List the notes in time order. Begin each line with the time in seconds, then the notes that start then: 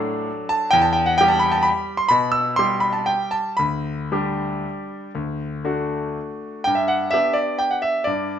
Already playing: A2 F#3 D4 A4 D6
0.49 A5
0.71 E2 G5
0.82 A5
0.93 G5
1.06 F#5
1.18 G3 G4 G5
1.28 A5
1.39 B5
1.52 A5
1.63 B5
1.97 C6
2.09 B2 B5
2.32 E6
2.56 G3 G4 C6
2.80 B5
2.93 A5
3.06 G5
3.31 A5
3.57 D2 B5
4.12 G3 D4 G4
5.15 D2
5.65 A3 D4 F#4
6.64 G2 G5
6.75 E5
6.88 F#5
7.11 B3 D4 G4 E5
7.33 D5
7.59 G5
7.71 F#5
7.82 E5
8.04 G2 D5